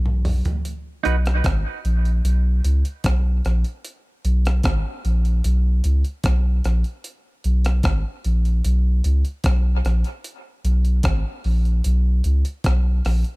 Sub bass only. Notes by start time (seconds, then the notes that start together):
Already playing: B1
1.06 B1
1.45 G#1
1.85 A#1
2.24 B1
2.65 C#2
3.04 B1
3.45 A#1
4.25 B1
4.64 G#1
5.05 A#1
5.45 B1
5.85 C#2
6.24 B1
6.65 A#1
7.45 B1
7.84 G#1
8.25 A#1
8.65 B1
9.05 C#2
9.45 B1
9.85 A#1
10.64 B1
11.04 G#1
11.45 A#1
11.86 B1
12.25 C#2
12.65 B1
13.05 A#1